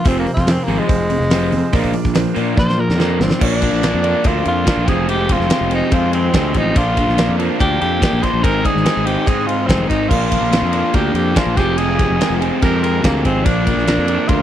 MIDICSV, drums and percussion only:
0, 0, Header, 1, 2, 480
1, 0, Start_track
1, 0, Tempo, 418702
1, 62, Time_signature, 4, 2, 24, 8
1, 16533, End_track
2, 0, Start_track
2, 0, Title_t, "Drums"
2, 56, Note_on_c, 9, 46, 91
2, 64, Note_on_c, 9, 36, 127
2, 171, Note_off_c, 9, 46, 0
2, 178, Note_off_c, 9, 36, 0
2, 304, Note_on_c, 9, 46, 64
2, 418, Note_off_c, 9, 46, 0
2, 423, Note_on_c, 9, 36, 86
2, 431, Note_on_c, 9, 38, 34
2, 538, Note_off_c, 9, 36, 0
2, 539, Note_on_c, 9, 46, 79
2, 546, Note_off_c, 9, 38, 0
2, 550, Note_on_c, 9, 38, 116
2, 654, Note_off_c, 9, 46, 0
2, 664, Note_off_c, 9, 38, 0
2, 783, Note_on_c, 9, 46, 60
2, 897, Note_off_c, 9, 46, 0
2, 1021, Note_on_c, 9, 46, 79
2, 1023, Note_on_c, 9, 36, 110
2, 1136, Note_off_c, 9, 46, 0
2, 1138, Note_off_c, 9, 36, 0
2, 1259, Note_on_c, 9, 46, 61
2, 1374, Note_off_c, 9, 46, 0
2, 1393, Note_on_c, 9, 38, 35
2, 1495, Note_on_c, 9, 46, 86
2, 1505, Note_off_c, 9, 38, 0
2, 1505, Note_on_c, 9, 38, 115
2, 1610, Note_off_c, 9, 46, 0
2, 1620, Note_off_c, 9, 38, 0
2, 1744, Note_on_c, 9, 46, 64
2, 1858, Note_off_c, 9, 46, 0
2, 1982, Note_on_c, 9, 46, 89
2, 1986, Note_on_c, 9, 36, 124
2, 2097, Note_off_c, 9, 46, 0
2, 2101, Note_off_c, 9, 36, 0
2, 2106, Note_on_c, 9, 36, 76
2, 2217, Note_on_c, 9, 46, 67
2, 2220, Note_off_c, 9, 36, 0
2, 2332, Note_off_c, 9, 46, 0
2, 2348, Note_on_c, 9, 36, 87
2, 2353, Note_on_c, 9, 38, 35
2, 2461, Note_on_c, 9, 46, 88
2, 2463, Note_off_c, 9, 36, 0
2, 2468, Note_off_c, 9, 38, 0
2, 2471, Note_on_c, 9, 38, 113
2, 2575, Note_off_c, 9, 46, 0
2, 2586, Note_off_c, 9, 38, 0
2, 2705, Note_on_c, 9, 46, 63
2, 2820, Note_off_c, 9, 46, 0
2, 2951, Note_on_c, 9, 36, 115
2, 2961, Note_on_c, 9, 38, 66
2, 3066, Note_off_c, 9, 36, 0
2, 3076, Note_off_c, 9, 38, 0
2, 3088, Note_on_c, 9, 38, 65
2, 3202, Note_off_c, 9, 38, 0
2, 3325, Note_on_c, 9, 38, 74
2, 3438, Note_off_c, 9, 38, 0
2, 3438, Note_on_c, 9, 38, 96
2, 3553, Note_off_c, 9, 38, 0
2, 3679, Note_on_c, 9, 38, 101
2, 3794, Note_off_c, 9, 38, 0
2, 3794, Note_on_c, 9, 38, 102
2, 3909, Note_off_c, 9, 38, 0
2, 3913, Note_on_c, 9, 49, 127
2, 3914, Note_on_c, 9, 36, 123
2, 4027, Note_off_c, 9, 49, 0
2, 4028, Note_off_c, 9, 36, 0
2, 4148, Note_on_c, 9, 51, 73
2, 4152, Note_on_c, 9, 36, 83
2, 4262, Note_off_c, 9, 51, 0
2, 4267, Note_off_c, 9, 36, 0
2, 4283, Note_on_c, 9, 38, 33
2, 4392, Note_on_c, 9, 51, 102
2, 4398, Note_off_c, 9, 38, 0
2, 4402, Note_on_c, 9, 38, 115
2, 4506, Note_off_c, 9, 51, 0
2, 4517, Note_off_c, 9, 38, 0
2, 4630, Note_on_c, 9, 51, 75
2, 4744, Note_off_c, 9, 51, 0
2, 4862, Note_on_c, 9, 51, 100
2, 4870, Note_on_c, 9, 36, 111
2, 4977, Note_off_c, 9, 51, 0
2, 4985, Note_off_c, 9, 36, 0
2, 5106, Note_on_c, 9, 51, 72
2, 5220, Note_off_c, 9, 51, 0
2, 5351, Note_on_c, 9, 36, 93
2, 5351, Note_on_c, 9, 51, 101
2, 5361, Note_on_c, 9, 38, 116
2, 5465, Note_off_c, 9, 51, 0
2, 5466, Note_off_c, 9, 36, 0
2, 5476, Note_off_c, 9, 38, 0
2, 5592, Note_on_c, 9, 36, 105
2, 5595, Note_on_c, 9, 51, 75
2, 5605, Note_on_c, 9, 38, 34
2, 5707, Note_off_c, 9, 36, 0
2, 5709, Note_off_c, 9, 51, 0
2, 5720, Note_off_c, 9, 38, 0
2, 5831, Note_on_c, 9, 51, 106
2, 5946, Note_off_c, 9, 51, 0
2, 6066, Note_on_c, 9, 51, 83
2, 6070, Note_on_c, 9, 36, 80
2, 6180, Note_off_c, 9, 51, 0
2, 6184, Note_off_c, 9, 36, 0
2, 6197, Note_on_c, 9, 38, 35
2, 6305, Note_on_c, 9, 51, 109
2, 6312, Note_off_c, 9, 38, 0
2, 6316, Note_on_c, 9, 38, 120
2, 6420, Note_off_c, 9, 51, 0
2, 6430, Note_off_c, 9, 38, 0
2, 6543, Note_on_c, 9, 51, 84
2, 6658, Note_off_c, 9, 51, 0
2, 6782, Note_on_c, 9, 51, 105
2, 6787, Note_on_c, 9, 36, 112
2, 6896, Note_off_c, 9, 51, 0
2, 6902, Note_off_c, 9, 36, 0
2, 7028, Note_on_c, 9, 51, 83
2, 7143, Note_off_c, 9, 51, 0
2, 7264, Note_on_c, 9, 51, 114
2, 7267, Note_on_c, 9, 36, 95
2, 7274, Note_on_c, 9, 38, 124
2, 7378, Note_off_c, 9, 51, 0
2, 7382, Note_off_c, 9, 36, 0
2, 7389, Note_off_c, 9, 38, 0
2, 7502, Note_on_c, 9, 51, 77
2, 7509, Note_on_c, 9, 36, 83
2, 7616, Note_off_c, 9, 51, 0
2, 7623, Note_off_c, 9, 36, 0
2, 7746, Note_on_c, 9, 51, 111
2, 7749, Note_on_c, 9, 36, 122
2, 7861, Note_off_c, 9, 51, 0
2, 7864, Note_off_c, 9, 36, 0
2, 7990, Note_on_c, 9, 51, 78
2, 7992, Note_on_c, 9, 36, 80
2, 8105, Note_off_c, 9, 51, 0
2, 8106, Note_off_c, 9, 36, 0
2, 8130, Note_on_c, 9, 38, 35
2, 8231, Note_on_c, 9, 51, 108
2, 8241, Note_off_c, 9, 38, 0
2, 8241, Note_on_c, 9, 38, 115
2, 8346, Note_off_c, 9, 51, 0
2, 8356, Note_off_c, 9, 38, 0
2, 8479, Note_on_c, 9, 51, 77
2, 8594, Note_off_c, 9, 51, 0
2, 8717, Note_on_c, 9, 36, 118
2, 8722, Note_on_c, 9, 51, 103
2, 8832, Note_off_c, 9, 36, 0
2, 8837, Note_off_c, 9, 51, 0
2, 8960, Note_on_c, 9, 51, 74
2, 9074, Note_off_c, 9, 51, 0
2, 9195, Note_on_c, 9, 36, 93
2, 9200, Note_on_c, 9, 51, 103
2, 9210, Note_on_c, 9, 38, 119
2, 9309, Note_off_c, 9, 36, 0
2, 9315, Note_off_c, 9, 51, 0
2, 9325, Note_off_c, 9, 38, 0
2, 9436, Note_on_c, 9, 36, 79
2, 9440, Note_on_c, 9, 51, 73
2, 9450, Note_on_c, 9, 38, 33
2, 9551, Note_off_c, 9, 36, 0
2, 9554, Note_off_c, 9, 51, 0
2, 9565, Note_off_c, 9, 38, 0
2, 9674, Note_on_c, 9, 36, 116
2, 9679, Note_on_c, 9, 51, 109
2, 9789, Note_off_c, 9, 36, 0
2, 9794, Note_off_c, 9, 51, 0
2, 9914, Note_on_c, 9, 36, 82
2, 9920, Note_on_c, 9, 51, 71
2, 10029, Note_off_c, 9, 36, 0
2, 10034, Note_off_c, 9, 51, 0
2, 10051, Note_on_c, 9, 38, 37
2, 10152, Note_on_c, 9, 51, 108
2, 10162, Note_off_c, 9, 38, 0
2, 10162, Note_on_c, 9, 38, 112
2, 10267, Note_off_c, 9, 51, 0
2, 10277, Note_off_c, 9, 38, 0
2, 10395, Note_on_c, 9, 51, 83
2, 10509, Note_off_c, 9, 51, 0
2, 10631, Note_on_c, 9, 36, 114
2, 10635, Note_on_c, 9, 51, 101
2, 10746, Note_off_c, 9, 36, 0
2, 10750, Note_off_c, 9, 51, 0
2, 10877, Note_on_c, 9, 51, 78
2, 10992, Note_off_c, 9, 51, 0
2, 11110, Note_on_c, 9, 36, 90
2, 11115, Note_on_c, 9, 51, 111
2, 11126, Note_on_c, 9, 38, 125
2, 11224, Note_off_c, 9, 36, 0
2, 11230, Note_off_c, 9, 51, 0
2, 11240, Note_off_c, 9, 38, 0
2, 11348, Note_on_c, 9, 36, 82
2, 11356, Note_on_c, 9, 51, 82
2, 11366, Note_on_c, 9, 38, 34
2, 11463, Note_off_c, 9, 36, 0
2, 11471, Note_off_c, 9, 51, 0
2, 11481, Note_off_c, 9, 38, 0
2, 11587, Note_on_c, 9, 36, 122
2, 11590, Note_on_c, 9, 49, 108
2, 11701, Note_off_c, 9, 36, 0
2, 11704, Note_off_c, 9, 49, 0
2, 11826, Note_on_c, 9, 36, 77
2, 11827, Note_on_c, 9, 51, 82
2, 11940, Note_off_c, 9, 36, 0
2, 11941, Note_off_c, 9, 51, 0
2, 11959, Note_on_c, 9, 38, 33
2, 12066, Note_on_c, 9, 51, 110
2, 12074, Note_off_c, 9, 38, 0
2, 12076, Note_on_c, 9, 38, 119
2, 12181, Note_off_c, 9, 51, 0
2, 12191, Note_off_c, 9, 38, 0
2, 12298, Note_on_c, 9, 51, 80
2, 12413, Note_off_c, 9, 51, 0
2, 12537, Note_on_c, 9, 51, 100
2, 12543, Note_on_c, 9, 36, 114
2, 12652, Note_off_c, 9, 51, 0
2, 12658, Note_off_c, 9, 36, 0
2, 12782, Note_on_c, 9, 51, 76
2, 12896, Note_off_c, 9, 51, 0
2, 13024, Note_on_c, 9, 51, 102
2, 13026, Note_on_c, 9, 36, 92
2, 13034, Note_on_c, 9, 38, 125
2, 13138, Note_off_c, 9, 51, 0
2, 13140, Note_off_c, 9, 36, 0
2, 13149, Note_off_c, 9, 38, 0
2, 13267, Note_on_c, 9, 36, 110
2, 13267, Note_on_c, 9, 51, 77
2, 13277, Note_on_c, 9, 38, 33
2, 13381, Note_off_c, 9, 51, 0
2, 13382, Note_off_c, 9, 36, 0
2, 13392, Note_off_c, 9, 38, 0
2, 13502, Note_on_c, 9, 51, 109
2, 13616, Note_off_c, 9, 51, 0
2, 13747, Note_on_c, 9, 51, 74
2, 13750, Note_on_c, 9, 36, 85
2, 13862, Note_off_c, 9, 51, 0
2, 13865, Note_off_c, 9, 36, 0
2, 13994, Note_on_c, 9, 51, 100
2, 14005, Note_on_c, 9, 38, 115
2, 14109, Note_off_c, 9, 51, 0
2, 14119, Note_off_c, 9, 38, 0
2, 14237, Note_on_c, 9, 51, 79
2, 14351, Note_off_c, 9, 51, 0
2, 14470, Note_on_c, 9, 51, 101
2, 14474, Note_on_c, 9, 36, 112
2, 14585, Note_off_c, 9, 51, 0
2, 14589, Note_off_c, 9, 36, 0
2, 14716, Note_on_c, 9, 51, 81
2, 14831, Note_off_c, 9, 51, 0
2, 14949, Note_on_c, 9, 51, 108
2, 14951, Note_on_c, 9, 36, 97
2, 14960, Note_on_c, 9, 38, 118
2, 15064, Note_off_c, 9, 51, 0
2, 15066, Note_off_c, 9, 36, 0
2, 15074, Note_off_c, 9, 38, 0
2, 15189, Note_on_c, 9, 51, 78
2, 15191, Note_on_c, 9, 36, 80
2, 15303, Note_off_c, 9, 51, 0
2, 15306, Note_off_c, 9, 36, 0
2, 15426, Note_on_c, 9, 51, 119
2, 15429, Note_on_c, 9, 36, 117
2, 15541, Note_off_c, 9, 51, 0
2, 15543, Note_off_c, 9, 36, 0
2, 15668, Note_on_c, 9, 51, 79
2, 15669, Note_on_c, 9, 36, 85
2, 15783, Note_off_c, 9, 51, 0
2, 15784, Note_off_c, 9, 36, 0
2, 15798, Note_on_c, 9, 38, 36
2, 15906, Note_on_c, 9, 51, 107
2, 15913, Note_off_c, 9, 38, 0
2, 15916, Note_on_c, 9, 38, 111
2, 16020, Note_off_c, 9, 51, 0
2, 16031, Note_off_c, 9, 38, 0
2, 16140, Note_on_c, 9, 51, 83
2, 16255, Note_off_c, 9, 51, 0
2, 16378, Note_on_c, 9, 51, 109
2, 16383, Note_on_c, 9, 36, 116
2, 16493, Note_off_c, 9, 51, 0
2, 16498, Note_off_c, 9, 36, 0
2, 16533, End_track
0, 0, End_of_file